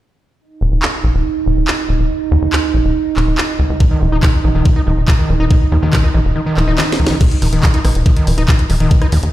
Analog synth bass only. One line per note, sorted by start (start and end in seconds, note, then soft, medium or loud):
0.61 0.67 D#1 medium
0.72 0.78 D#1 medium
1.04 1.10 A#1 medium
1.14 1.20 D#1 medium
1.46 1.52 D#1 loud
1.57 1.63 D#1 medium
1.89 1.95 D#1 medium
1.99 2.05 D#1 medium
2.31 2.37 D#2 medium
2.42 2.48 D#2 medium
2.74 2.80 A#1 medium
2.85 2.91 E1 medium
3.17 3.22 D#1 loud
3.27 3.33 D#1 medium
3.59 3.65 C#2 medium
3.70 3.76 C#2 medium
4.02 4.08 D#1 medium
4.12 4.18 D#1 medium
4.44 4.50 A#1 medium
4.55 4.61 D#1 medium
4.87 4.93 D#1 loud
4.97 5.03 D#1 medium
5.29 5.35 D#1 loud
5.40 5.46 D#1 medium
5.72 5.78 D#2 medium
5.82 5.88 D#2 medium
6.14 6.20 A#1 medium
6.25 6.31 E1 medium
6.57 6.63 D#1 loud
6.68 6.74 D#1 medium
6.99 7.05 C#2 medium
7.10 7.16 C#2 medium
7.42 7.48 D#1 loud
7.53 7.59 D#1 medium
7.85 7.91 A#1 medium
7.95 8.01 D#1 medium
8.27 8.33 D#1 loud
8.38 8.44 D#1 medium
8.70 8.76 D#1 medium
8.80 8.86 D#1 medium
9.12 9.18 D#2 medium
9.23 9.29 D#2 medium